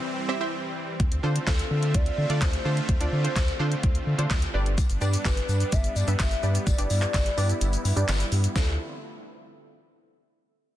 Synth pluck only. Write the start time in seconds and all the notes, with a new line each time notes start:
0.29 C4 E4 G4 C5 E5
0.40 C4 E4 G4 C5 E5
1.23 D4 F4 A4 C5
1.47 D4 F4 A4 C5
2.30 D4 F4 A4 D5
2.65 D4 F4 A4 C5
3.00 D4 F4 A4 D5
3.24 D4 F4 A4 C5
3.59 D4 F4 A4 C5
4.18 D4 F4 A4 C5
4.54 D4 G4 B4 D5
5.01 D4 G4 B4 D5
5.25 D4 G4 B4 D5
6.07 D4 G4 B4 E5
6.43 D4 G4 B4 D5
6.78 D4 G4 B4 D5
7.02 D4 G4 B4 D5
7.37 D4 G4 B4 D5
7.96 D4 G4 B4 D5
8.56 D4 F4 A4 C5